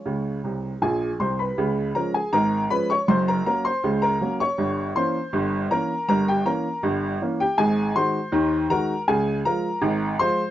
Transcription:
<<
  \new Staff \with { instrumentName = "Upright piano" } { \time 2/4 \key des \major \tempo 4 = 80 <f' aes' des''>4 <aes' aes''>8 <c'' c'''>16 <ces'' ces'''>16~ | <ces'' ces'''>8 <bes' bes''>16 <aes' aes''>16 <bes' bes''>8 <ces'' ces'''>16 <des'' des'''>16 | <c'' c'''>16 <bes' bes''>16 <bes' bes''>16 <c'' c'''>8 <bes' bes''>8 <des'' des'''>16~ | <des'' des'''>8 <c'' c'''>4 <bes' bes''>8 |
<bes' bes''>16 <g' g''>16 <bes' bes''>8 r8. <g' g''>16 | <aes' aes''>8 <c'' c'''>4 <bes' bes''>8 | <aes' aes''>8 <bes' bes''>4 <c'' c'''>8 | }
  \new Staff \with { instrumentName = "Upright piano" } { \clef bass \time 2/4 \key des \major <des, des>8 <c, c>8 <bes,, bes,>8 <c, c>8 | <des, des>8 <f aes des'>8 <aes,, aes,>8 <f aes des'>8 | <ges,, ges,>8 <ges bes des'>8 <des, des>8 <ges bes des'>8 | <g,, g,>8 <e bes des'>8 <g,, g,>8 <e bes des'>8 |
<g,, g,>8 <e bes des'>8 <g,, g,>8 <e bes des'>8 | <aes,, aes,>8 <ees aes ges'>8 <ees, ees>8 <ees aes ges'>8 | <des, des>8 <f aes f'>8 <aes,, aes,>8 <f aes f'>8 | }
>>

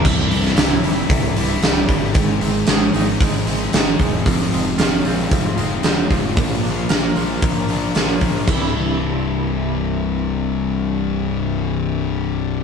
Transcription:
<<
  \new Staff \with { instrumentName = "Distorted electric guitar" } { \time 4/4 \key c \mixolydian \tempo 4 = 114 <c, g, c g e'>8 <c g e'>8 <c, g, c g e'>8 <c g e'>4 <c g e'>8 <g, c g e'>4 | <aes, ees aes c' ees' aes'>8 <aes c' ees' aes'>8 <aes, ees aes c' ees' aes'>8 <aes c' ees' aes'>4 <aes c' ees' aes'>8 <aes c' ees' aes'>4 | <f, c f aes c' f'>8 <f aes c' f'>8 <f, c f aes c' f'>8 <f aes c' f'>4 <f aes c' f'>8 <f aes c' f'>4 | <bes, f bes d' f' bes'>8 <bes d' f' bes'>8 <bes, f bes d' f' bes'>8 <bes d' f' bes'>4 <bes d' f' bes'>8 <bes d' f' bes'>4 |
<c, g, c>1~ | <c, g, c>1 | }
  \new Staff \with { instrumentName = "Clean electric guitar" } { \clef bass \time 4/4 \key c \mixolydian c,8 c8 e'8 g8 g,8 c8 g8 g,8 | aes,8 c'8 aes'8 ees'8 aes8 c'8 ees'8 aes8 | f,8 aes8 f'8 c'8 f8 aes8 c'8 f8 | bes,8 d'8 bes'8 f'8 bes8 d'8 f'8 bes8 |
<c, g, c g e'>1~ | <c, g, c g e'>1 | }
  \new Staff \with { instrumentName = "Picked electric bass" } { \clef bass \time 4/4 \key c \mixolydian c,,8 c,,8 c,,8 f,,8 c,,8 c,,8 c,,8 g,,8 | aes,,8 aes,,8 aes,,8 aes,,8 aes,,8 aes,,8 aes,,8 e,,8 | f,,8 f,,8 f,,8 bes,,8 f,,8 f,,8 f,,8 f,,8 | bes,,8 bes,,8 bes,,8 bes,,8 bes,,8 bes,,8 bes,,8 bes,,8 |
c,,1~ | c,,1 | }
  \new DrumStaff \with { instrumentName = "Drums" } \drummode { \time 4/4 <cymc bd>8 hho16 sn16 <hho sn>8 hho8 <hho bd>8 hho8 <hho sn>8 <hho bd>8 | <hho bd>8 hho8 <hho sn>8 hho8 <hho bd>8 hho8 <hho sn>8 <hho bd>8 | <hho bd>8 hho8 <hho sn>8 hho8 <hho bd>8 hho8 <hho sn>8 <hho bd>8 | <hho bd>8 hho8 <hho sn>8 hho8 <hho bd>8 hho8 <hho sn>8 <hho bd>8 |
<cymc bd>4 r4 r4 r4 | r4 r4 r4 r4 | }
>>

